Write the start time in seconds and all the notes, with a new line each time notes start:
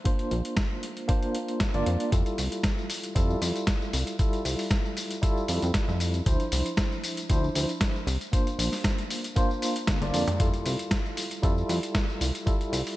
0.04 A#3 D4 F4 C5, kick, closed hi-hat
0.19 closed hi-hat
0.31 A#1, closed hi-hat
0.45 closed hi-hat
0.57 kick, snare, closed hi-hat
0.83 closed hi-hat
0.97 closed hi-hat
1.08 A#3 D4 F4 C5, kick, closed hi-hat
1.23 closed hi-hat
1.35 closed hi-hat
1.48 closed hi-hat
1.60 kick, snare, closed hi-hat
1.74 G1 A#3 D4 F4 D5, closed hi-hat
1.86 F2, closed hi-hat
2.00 closed hi-hat
2.11 F2 G3 E4 F4 A4, kick, closed hi-hat, tambourine
2.26 closed hi-hat, tambourine
2.38 C2, open hi-hat, tambourine
2.52 closed hi-hat, tambourine
2.63 kick, snare, closed hi-hat, tambourine
2.79 tambourine
2.90 open hi-hat, tambourine
3.04 closed hi-hat, tambourine
3.15 F2 G3 E4 F4 A4, kick, closed hi-hat, tambourine
3.30 tambourine
3.42 F2, open hi-hat, tambourine
3.56 closed hi-hat, tambourine
3.67 kick, snare, closed hi-hat, tambourine
3.82 tambourine
3.93 C2, open hi-hat, tambourine
4.07 closed hi-hat, tambourine
4.19 G3 E4 F4 A4, kick, closed hi-hat, tambourine
4.33 closed hi-hat, tambourine
4.45 C2, open hi-hat, tambourine
4.59 open hi-hat, tambourine
4.71 kick, snare, closed hi-hat, tambourine
4.86 tambourine
4.97 open hi-hat, tambourine
5.11 closed hi-hat, tambourine
5.21 G3 E4 F4 A4, kick, closed hi-hat, tambourine
5.37 tambourine
5.48 F2, open hi-hat, tambourine
5.62 F2, closed hi-hat, tambourine
5.74 kick, snare, closed hi-hat, tambourine
5.88 F2, tambourine
6.00 open hi-hat, tambourine
6.14 closed hi-hat, tambourine
6.25 D2 F3 D4 E4 C5, kick, closed hi-hat, tambourine
6.40 closed hi-hat, tambourine
6.52 C2, open hi-hat, tambourine
6.66 closed hi-hat, tambourine
6.77 kick, snare, closed hi-hat, tambourine
6.92 tambourine
7.04 open hi-hat, tambourine
7.17 closed hi-hat, tambourine
7.29 D2 F3 D4 E4 C5, kick, closed hi-hat, tambourine
7.44 tambourine
7.55 D2, open hi-hat, tambourine
7.69 closed hi-hat, tambourine
7.81 kick, snare, closed hi-hat, tambourine
7.96 tambourine
8.07 C2, open hi-hat, tambourine
8.21 closed hi-hat, tambourine
8.32 A#3 D4 F4 C5, kick, closed hi-hat, tambourine
8.47 closed hi-hat, tambourine
8.59 A#1, open hi-hat, tambourine
8.72 snare, open hi-hat, tambourine
8.84 kick, snare, closed hi-hat, tambourine
8.98 closed hi-hat, tambourine
9.10 open hi-hat, tambourine
9.24 closed hi-hat, tambourine
9.36 A#3 D4 F4 C5, kick, closed hi-hat, tambourine
9.51 tambourine
9.62 open hi-hat, tambourine
9.76 closed hi-hat, tambourine
9.87 kick, snare, closed hi-hat, high tom, tambourine
10.01 G1 A#3 D4 F4 D5, closed hi-hat, high tom, tambourine
10.14 F2, open hi-hat, tambourine
10.28 closed hi-hat, mid tom, tambourine
10.39 F2 G3 E4 F4 A4, kick, closed hi-hat, tambourine
10.54 closed hi-hat, tambourine
10.66 C2, open hi-hat, tambourine
10.79 closed hi-hat, tambourine
10.91 kick, snare, closed hi-hat, tambourine
11.06 tambourine
11.17 open hi-hat, tambourine
11.31 closed hi-hat, tambourine
11.42 F2 G3 E4 F4 A4, kick, closed hi-hat, tambourine
11.58 tambourine
11.69 F2, open hi-hat, tambourine
11.83 closed hi-hat, tambourine
11.95 kick, snare, closed hi-hat, tambourine
12.10 tambourine
12.21 C2, open hi-hat, tambourine
12.35 closed hi-hat, tambourine
12.46 G3 E4 F4 A4, kick, closed hi-hat, tambourine
12.61 closed hi-hat, tambourine
12.72 C2, open hi-hat, tambourine
12.87 open hi-hat, tambourine